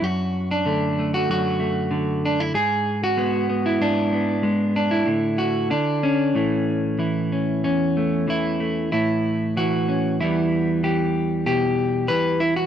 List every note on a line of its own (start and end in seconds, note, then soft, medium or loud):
0.01 1.28 F#2 medium
0.01 0.51 F#4 loud
0.51 1.14 D4 medium
0.66 1.90 D3 medium
0.66 0.98 A3 soft
0.99 1.59 A3 soft
1.14 1.30 F#4 loud
1.29 2.51 F#2 medium
1.29 2.24 F#4 loud
1.60 2.51 A3 soft
1.91 2.54 D3 medium
2.25 2.40 D4 medium
2.40 2.55 E4 medium
2.54 3.79 G#2 medium
2.54 3.02 G#4 loud
3.04 3.81 F#4 loud
3.17 4.42 G#3 medium
3.17 3.48 B3 medium
3.50 4.12 B3 soft
3.66 4.44 E4 medium
3.81 5.03 G#2 medium
3.81 4.75 D4 medium
4.13 5.04 B3 soft
4.43 5.03 G#3 medium
4.76 5.08 D4 medium
4.91 6.03 E4 medium
5.06 5.70 A2 medium
5.06 5.69 D3 soft
5.38 5.70 F#4 medium
5.70 6.34 D3 medium
5.70 6.35 D4 medium
6.03 7.31 C#4 medium
6.35 7.63 A2 medium
6.35 6.98 E3 soft
6.35 7.96 A3 soft
6.99 8.27 E3 medium
6.99 8.30 E4 soft
7.32 7.63 C#4 soft
7.64 8.88 E2 medium
7.64 8.92 C#4 medium
7.97 8.59 A3 soft
8.28 9.56 E3 medium
8.28 8.91 E4 medium
8.60 8.88 A3 soft
8.92 10.20 A2 medium
8.92 9.56 E4 medium
9.57 10.21 E3 medium
9.57 10.20 F#4 medium
9.89 10.16 C#4 soft
10.20 12.66 E2 medium
10.20 10.83 E3 soft
10.20 12.66 G3 soft
10.20 12.66 B3 soft
10.20 10.83 E4 medium
10.84 12.09 E3 medium
10.84 11.45 G4 medium
11.46 12.09 B2 medium
11.46 12.40 G4 loud
12.08 12.66 E3 medium
12.08 12.40 B4 loud
12.40 12.56 E4 medium
12.56 12.66 F#4 medium